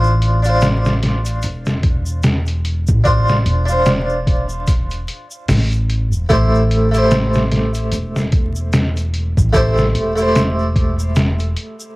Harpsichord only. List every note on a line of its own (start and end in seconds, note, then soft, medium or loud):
0.00 0.39 D4 medium
0.00 0.40 F4 medium
0.00 0.40 C5 medium
0.43 3.00 D4 medium
0.43 3.01 F4 medium
0.49 3.03 C5 medium
3.04 3.63 D4 medium
3.04 3.64 F4 medium
3.04 3.65 C5 medium
3.66 6.24 D4 medium
3.66 6.25 F4 medium
3.72 6.27 C5 medium
6.29 6.88 A3 medium
6.29 6.88 E4 medium
6.29 6.89 G4 medium
6.29 6.89 C5 medium
6.91 9.49 A3 medium
6.91 9.50 E4 medium
6.91 9.51 G4 medium
6.98 9.52 C5 medium
9.53 10.12 A3 medium
9.53 10.12 E4 medium
9.53 10.13 G4 medium
9.53 10.13 C5 medium
10.15 11.96 A3 medium
10.15 11.96 E4 medium
10.15 11.96 G4 medium
10.21 11.96 C5 medium